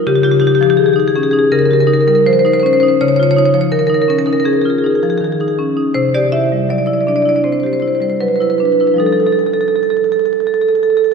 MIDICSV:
0, 0, Header, 1, 2, 480
1, 0, Start_track
1, 0, Tempo, 742574
1, 34, Time_signature, 4, 2, 24, 8
1, 4834, Tempo, 774194
1, 7105, End_track
2, 0, Start_track
2, 0, Title_t, "Marimba"
2, 0, Program_c, 0, 12
2, 43, Note_on_c, 0, 49, 88
2, 44, Note_on_c, 0, 67, 122
2, 101, Note_off_c, 0, 67, 0
2, 101, Note_on_c, 0, 67, 92
2, 151, Note_off_c, 0, 67, 0
2, 151, Note_on_c, 0, 67, 107
2, 159, Note_on_c, 0, 65, 78
2, 204, Note_off_c, 0, 67, 0
2, 204, Note_on_c, 0, 67, 96
2, 257, Note_off_c, 0, 67, 0
2, 257, Note_on_c, 0, 67, 102
2, 266, Note_on_c, 0, 63, 63
2, 304, Note_off_c, 0, 67, 0
2, 304, Note_on_c, 0, 67, 103
2, 346, Note_off_c, 0, 65, 0
2, 356, Note_off_c, 0, 67, 0
2, 356, Note_on_c, 0, 67, 101
2, 394, Note_on_c, 0, 53, 68
2, 405, Note_off_c, 0, 67, 0
2, 405, Note_on_c, 0, 67, 104
2, 452, Note_off_c, 0, 67, 0
2, 452, Note_on_c, 0, 67, 107
2, 458, Note_off_c, 0, 63, 0
2, 495, Note_off_c, 0, 67, 0
2, 497, Note_on_c, 0, 51, 60
2, 498, Note_on_c, 0, 68, 93
2, 556, Note_off_c, 0, 68, 0
2, 556, Note_on_c, 0, 68, 79
2, 582, Note_off_c, 0, 53, 0
2, 604, Note_off_c, 0, 68, 0
2, 604, Note_on_c, 0, 68, 80
2, 620, Note_on_c, 0, 63, 70
2, 621, Note_off_c, 0, 51, 0
2, 645, Note_off_c, 0, 68, 0
2, 645, Note_on_c, 0, 68, 73
2, 695, Note_off_c, 0, 68, 0
2, 695, Note_on_c, 0, 68, 84
2, 747, Note_off_c, 0, 68, 0
2, 747, Note_on_c, 0, 68, 78
2, 751, Note_on_c, 0, 61, 60
2, 796, Note_off_c, 0, 68, 0
2, 796, Note_on_c, 0, 68, 85
2, 814, Note_off_c, 0, 63, 0
2, 848, Note_off_c, 0, 68, 0
2, 848, Note_on_c, 0, 68, 77
2, 861, Note_on_c, 0, 63, 69
2, 868, Note_off_c, 0, 61, 0
2, 897, Note_off_c, 0, 68, 0
2, 897, Note_on_c, 0, 68, 82
2, 961, Note_off_c, 0, 68, 0
2, 964, Note_off_c, 0, 49, 0
2, 981, Note_on_c, 0, 49, 86
2, 982, Note_on_c, 0, 70, 110
2, 983, Note_off_c, 0, 63, 0
2, 1027, Note_off_c, 0, 70, 0
2, 1027, Note_on_c, 0, 70, 88
2, 1070, Note_off_c, 0, 70, 0
2, 1070, Note_on_c, 0, 70, 92
2, 1104, Note_on_c, 0, 67, 68
2, 1120, Note_off_c, 0, 70, 0
2, 1120, Note_on_c, 0, 70, 92
2, 1166, Note_off_c, 0, 70, 0
2, 1166, Note_on_c, 0, 70, 90
2, 1208, Note_off_c, 0, 70, 0
2, 1208, Note_on_c, 0, 63, 69
2, 1208, Note_on_c, 0, 70, 85
2, 1250, Note_off_c, 0, 70, 0
2, 1250, Note_on_c, 0, 70, 99
2, 1297, Note_off_c, 0, 67, 0
2, 1297, Note_off_c, 0, 70, 0
2, 1297, Note_on_c, 0, 70, 86
2, 1341, Note_on_c, 0, 55, 72
2, 1343, Note_off_c, 0, 70, 0
2, 1343, Note_on_c, 0, 70, 94
2, 1390, Note_off_c, 0, 70, 0
2, 1390, Note_on_c, 0, 70, 85
2, 1409, Note_off_c, 0, 63, 0
2, 1445, Note_off_c, 0, 70, 0
2, 1460, Note_on_c, 0, 53, 60
2, 1464, Note_on_c, 0, 72, 113
2, 1506, Note_off_c, 0, 72, 0
2, 1506, Note_on_c, 0, 72, 89
2, 1535, Note_off_c, 0, 55, 0
2, 1547, Note_off_c, 0, 72, 0
2, 1547, Note_on_c, 0, 72, 102
2, 1582, Note_on_c, 0, 63, 73
2, 1583, Note_off_c, 0, 53, 0
2, 1591, Note_off_c, 0, 72, 0
2, 1591, Note_on_c, 0, 72, 92
2, 1638, Note_off_c, 0, 72, 0
2, 1638, Note_on_c, 0, 72, 95
2, 1678, Note_off_c, 0, 72, 0
2, 1678, Note_on_c, 0, 72, 91
2, 1701, Note_on_c, 0, 61, 65
2, 1721, Note_off_c, 0, 72, 0
2, 1721, Note_on_c, 0, 72, 100
2, 1764, Note_off_c, 0, 72, 0
2, 1764, Note_on_c, 0, 72, 87
2, 1774, Note_off_c, 0, 63, 0
2, 1811, Note_off_c, 0, 72, 0
2, 1811, Note_on_c, 0, 72, 101
2, 1821, Note_off_c, 0, 61, 0
2, 1829, Note_on_c, 0, 63, 65
2, 1863, Note_off_c, 0, 72, 0
2, 1863, Note_on_c, 0, 72, 92
2, 1914, Note_off_c, 0, 49, 0
2, 1922, Note_off_c, 0, 72, 0
2, 1945, Note_off_c, 0, 63, 0
2, 1945, Note_on_c, 0, 73, 127
2, 1946, Note_on_c, 0, 49, 86
2, 1993, Note_off_c, 0, 73, 0
2, 1993, Note_on_c, 0, 73, 104
2, 2044, Note_off_c, 0, 73, 0
2, 2044, Note_on_c, 0, 73, 107
2, 2066, Note_on_c, 0, 65, 82
2, 2087, Note_off_c, 0, 73, 0
2, 2087, Note_on_c, 0, 73, 107
2, 2138, Note_off_c, 0, 73, 0
2, 2138, Note_on_c, 0, 73, 110
2, 2177, Note_on_c, 0, 63, 71
2, 2187, Note_off_c, 0, 73, 0
2, 2187, Note_on_c, 0, 73, 96
2, 2233, Note_off_c, 0, 73, 0
2, 2233, Note_on_c, 0, 73, 108
2, 2253, Note_off_c, 0, 65, 0
2, 2288, Note_off_c, 0, 73, 0
2, 2288, Note_on_c, 0, 73, 102
2, 2290, Note_on_c, 0, 53, 65
2, 2333, Note_off_c, 0, 73, 0
2, 2333, Note_on_c, 0, 73, 104
2, 2368, Note_off_c, 0, 63, 0
2, 2400, Note_off_c, 0, 73, 0
2, 2403, Note_on_c, 0, 70, 116
2, 2406, Note_on_c, 0, 51, 57
2, 2450, Note_off_c, 0, 70, 0
2, 2450, Note_on_c, 0, 70, 95
2, 2485, Note_off_c, 0, 53, 0
2, 2501, Note_off_c, 0, 70, 0
2, 2501, Note_on_c, 0, 70, 103
2, 2519, Note_on_c, 0, 63, 70
2, 2532, Note_off_c, 0, 51, 0
2, 2549, Note_off_c, 0, 70, 0
2, 2549, Note_on_c, 0, 70, 92
2, 2596, Note_off_c, 0, 70, 0
2, 2596, Note_on_c, 0, 70, 101
2, 2639, Note_on_c, 0, 61, 64
2, 2650, Note_off_c, 0, 70, 0
2, 2650, Note_on_c, 0, 70, 97
2, 2706, Note_off_c, 0, 70, 0
2, 2706, Note_on_c, 0, 70, 99
2, 2720, Note_off_c, 0, 63, 0
2, 2753, Note_off_c, 0, 70, 0
2, 2753, Note_on_c, 0, 70, 92
2, 2759, Note_on_c, 0, 63, 71
2, 2768, Note_off_c, 0, 61, 0
2, 2797, Note_off_c, 0, 70, 0
2, 2797, Note_on_c, 0, 70, 102
2, 2842, Note_off_c, 0, 70, 0
2, 2842, Note_on_c, 0, 70, 94
2, 2871, Note_off_c, 0, 70, 0
2, 2873, Note_off_c, 0, 49, 0
2, 2874, Note_on_c, 0, 61, 59
2, 2879, Note_on_c, 0, 68, 81
2, 2931, Note_off_c, 0, 68, 0
2, 2931, Note_on_c, 0, 68, 64
2, 2961, Note_off_c, 0, 63, 0
2, 2983, Note_off_c, 0, 68, 0
2, 2983, Note_on_c, 0, 68, 71
2, 3008, Note_on_c, 0, 65, 69
2, 3038, Note_off_c, 0, 68, 0
2, 3038, Note_on_c, 0, 68, 68
2, 3079, Note_off_c, 0, 61, 0
2, 3092, Note_off_c, 0, 68, 0
2, 3092, Note_on_c, 0, 68, 67
2, 3129, Note_on_c, 0, 63, 67
2, 3144, Note_off_c, 0, 68, 0
2, 3144, Note_on_c, 0, 68, 68
2, 3201, Note_off_c, 0, 68, 0
2, 3201, Note_on_c, 0, 68, 67
2, 3206, Note_off_c, 0, 65, 0
2, 3250, Note_on_c, 0, 53, 71
2, 3252, Note_off_c, 0, 68, 0
2, 3252, Note_on_c, 0, 68, 64
2, 3295, Note_off_c, 0, 68, 0
2, 3295, Note_on_c, 0, 68, 69
2, 3327, Note_off_c, 0, 63, 0
2, 3347, Note_off_c, 0, 68, 0
2, 3347, Note_on_c, 0, 68, 68
2, 3367, Note_on_c, 0, 51, 63
2, 3389, Note_off_c, 0, 68, 0
2, 3389, Note_on_c, 0, 68, 71
2, 3441, Note_off_c, 0, 68, 0
2, 3441, Note_on_c, 0, 68, 63
2, 3448, Note_off_c, 0, 53, 0
2, 3491, Note_off_c, 0, 68, 0
2, 3491, Note_on_c, 0, 68, 67
2, 3495, Note_off_c, 0, 51, 0
2, 3495, Note_on_c, 0, 63, 61
2, 3541, Note_off_c, 0, 68, 0
2, 3541, Note_on_c, 0, 68, 62
2, 3587, Note_off_c, 0, 68, 0
2, 3612, Note_on_c, 0, 61, 62
2, 3692, Note_off_c, 0, 63, 0
2, 3728, Note_on_c, 0, 63, 65
2, 3738, Note_off_c, 0, 61, 0
2, 3842, Note_on_c, 0, 72, 112
2, 3846, Note_on_c, 0, 48, 81
2, 3857, Note_off_c, 0, 63, 0
2, 3972, Note_on_c, 0, 67, 77
2, 3972, Note_on_c, 0, 74, 114
2, 3975, Note_off_c, 0, 72, 0
2, 4086, Note_on_c, 0, 76, 106
2, 4088, Note_on_c, 0, 64, 65
2, 4100, Note_off_c, 0, 74, 0
2, 4173, Note_off_c, 0, 67, 0
2, 4215, Note_on_c, 0, 55, 55
2, 4291, Note_off_c, 0, 64, 0
2, 4325, Note_on_c, 0, 54, 52
2, 4328, Note_off_c, 0, 76, 0
2, 4332, Note_on_c, 0, 74, 93
2, 4384, Note_off_c, 0, 74, 0
2, 4384, Note_on_c, 0, 74, 72
2, 4414, Note_off_c, 0, 55, 0
2, 4435, Note_off_c, 0, 74, 0
2, 4435, Note_on_c, 0, 74, 80
2, 4441, Note_on_c, 0, 64, 60
2, 4457, Note_off_c, 0, 54, 0
2, 4482, Note_off_c, 0, 74, 0
2, 4482, Note_on_c, 0, 74, 72
2, 4529, Note_off_c, 0, 74, 0
2, 4529, Note_on_c, 0, 74, 76
2, 4570, Note_on_c, 0, 62, 58
2, 4579, Note_off_c, 0, 74, 0
2, 4579, Note_on_c, 0, 74, 74
2, 4627, Note_off_c, 0, 74, 0
2, 4627, Note_on_c, 0, 74, 83
2, 4648, Note_off_c, 0, 64, 0
2, 4668, Note_off_c, 0, 74, 0
2, 4668, Note_on_c, 0, 74, 71
2, 4690, Note_on_c, 0, 64, 57
2, 4701, Note_off_c, 0, 62, 0
2, 4712, Note_off_c, 0, 74, 0
2, 4712, Note_on_c, 0, 74, 83
2, 4757, Note_off_c, 0, 74, 0
2, 4757, Note_on_c, 0, 74, 75
2, 4797, Note_off_c, 0, 48, 0
2, 4804, Note_off_c, 0, 74, 0
2, 4809, Note_on_c, 0, 60, 49
2, 4809, Note_on_c, 0, 72, 77
2, 4862, Note_off_c, 0, 72, 0
2, 4862, Note_on_c, 0, 72, 61
2, 4892, Note_off_c, 0, 64, 0
2, 4908, Note_off_c, 0, 72, 0
2, 4908, Note_on_c, 0, 72, 64
2, 4931, Note_on_c, 0, 67, 55
2, 4949, Note_off_c, 0, 72, 0
2, 4949, Note_on_c, 0, 72, 62
2, 4990, Note_off_c, 0, 72, 0
2, 4990, Note_on_c, 0, 72, 68
2, 5008, Note_off_c, 0, 60, 0
2, 5032, Note_off_c, 0, 72, 0
2, 5032, Note_on_c, 0, 72, 64
2, 5048, Note_on_c, 0, 64, 51
2, 5081, Note_off_c, 0, 72, 0
2, 5081, Note_on_c, 0, 72, 64
2, 5126, Note_off_c, 0, 72, 0
2, 5126, Note_on_c, 0, 72, 61
2, 5127, Note_off_c, 0, 67, 0
2, 5159, Note_on_c, 0, 55, 56
2, 5169, Note_off_c, 0, 72, 0
2, 5169, Note_on_c, 0, 72, 70
2, 5216, Note_off_c, 0, 72, 0
2, 5216, Note_on_c, 0, 72, 60
2, 5245, Note_off_c, 0, 64, 0
2, 5270, Note_off_c, 0, 72, 0
2, 5283, Note_on_c, 0, 54, 49
2, 5285, Note_on_c, 0, 71, 81
2, 5334, Note_off_c, 0, 71, 0
2, 5334, Note_on_c, 0, 71, 62
2, 5360, Note_off_c, 0, 55, 0
2, 5378, Note_off_c, 0, 71, 0
2, 5378, Note_on_c, 0, 71, 67
2, 5409, Note_on_c, 0, 64, 59
2, 5411, Note_off_c, 0, 54, 0
2, 5417, Note_off_c, 0, 71, 0
2, 5417, Note_on_c, 0, 71, 68
2, 5467, Note_off_c, 0, 71, 0
2, 5467, Note_on_c, 0, 71, 72
2, 5518, Note_off_c, 0, 71, 0
2, 5518, Note_on_c, 0, 71, 67
2, 5530, Note_on_c, 0, 62, 50
2, 5563, Note_off_c, 0, 71, 0
2, 5563, Note_on_c, 0, 71, 66
2, 5605, Note_off_c, 0, 71, 0
2, 5605, Note_on_c, 0, 71, 63
2, 5607, Note_off_c, 0, 64, 0
2, 5653, Note_off_c, 0, 71, 0
2, 5653, Note_on_c, 0, 71, 66
2, 5656, Note_off_c, 0, 62, 0
2, 5657, Note_on_c, 0, 64, 52
2, 5698, Note_off_c, 0, 71, 0
2, 5698, Note_on_c, 0, 71, 67
2, 5740, Note_on_c, 0, 53, 64
2, 5755, Note_off_c, 0, 71, 0
2, 5755, Note_on_c, 0, 55, 52
2, 5767, Note_on_c, 0, 63, 52
2, 5776, Note_on_c, 0, 69, 78
2, 5781, Note_off_c, 0, 64, 0
2, 5817, Note_off_c, 0, 69, 0
2, 5817, Note_on_c, 0, 69, 64
2, 5855, Note_off_c, 0, 69, 0
2, 5855, Note_on_c, 0, 69, 67
2, 5901, Note_off_c, 0, 69, 0
2, 5901, Note_on_c, 0, 69, 63
2, 5942, Note_off_c, 0, 69, 0
2, 5942, Note_on_c, 0, 69, 70
2, 5979, Note_off_c, 0, 69, 0
2, 5979, Note_on_c, 0, 69, 61
2, 6019, Note_off_c, 0, 69, 0
2, 6019, Note_on_c, 0, 69, 69
2, 6066, Note_off_c, 0, 69, 0
2, 6066, Note_on_c, 0, 69, 62
2, 6110, Note_off_c, 0, 69, 0
2, 6110, Note_on_c, 0, 69, 67
2, 6154, Note_off_c, 0, 69, 0
2, 6154, Note_on_c, 0, 69, 60
2, 6199, Note_off_c, 0, 69, 0
2, 6199, Note_on_c, 0, 69, 67
2, 6247, Note_off_c, 0, 69, 0
2, 6247, Note_on_c, 0, 69, 59
2, 6292, Note_off_c, 0, 69, 0
2, 6292, Note_on_c, 0, 69, 70
2, 6337, Note_off_c, 0, 69, 0
2, 6337, Note_on_c, 0, 69, 65
2, 6377, Note_off_c, 0, 69, 0
2, 6377, Note_on_c, 0, 69, 65
2, 6425, Note_off_c, 0, 69, 0
2, 6425, Note_on_c, 0, 69, 63
2, 6472, Note_off_c, 0, 69, 0
2, 6472, Note_on_c, 0, 69, 67
2, 6518, Note_off_c, 0, 69, 0
2, 6518, Note_on_c, 0, 69, 60
2, 6557, Note_off_c, 0, 69, 0
2, 6557, Note_on_c, 0, 69, 64
2, 6601, Note_off_c, 0, 69, 0
2, 6601, Note_on_c, 0, 69, 64
2, 6647, Note_off_c, 0, 69, 0
2, 6647, Note_on_c, 0, 69, 64
2, 6689, Note_off_c, 0, 69, 0
2, 6689, Note_on_c, 0, 69, 65
2, 6732, Note_off_c, 0, 69, 0
2, 6732, Note_on_c, 0, 69, 66
2, 6778, Note_off_c, 0, 69, 0
2, 6778, Note_on_c, 0, 69, 61
2, 6822, Note_off_c, 0, 69, 0
2, 6822, Note_on_c, 0, 69, 63
2, 6865, Note_off_c, 0, 69, 0
2, 6865, Note_on_c, 0, 69, 61
2, 6912, Note_off_c, 0, 69, 0
2, 6912, Note_on_c, 0, 69, 69
2, 6957, Note_off_c, 0, 69, 0
2, 6957, Note_on_c, 0, 69, 59
2, 6998, Note_off_c, 0, 69, 0
2, 6998, Note_on_c, 0, 69, 67
2, 7045, Note_off_c, 0, 69, 0
2, 7045, Note_on_c, 0, 69, 62
2, 7105, Note_off_c, 0, 53, 0
2, 7105, Note_off_c, 0, 55, 0
2, 7105, Note_off_c, 0, 63, 0
2, 7105, Note_off_c, 0, 69, 0
2, 7105, End_track
0, 0, End_of_file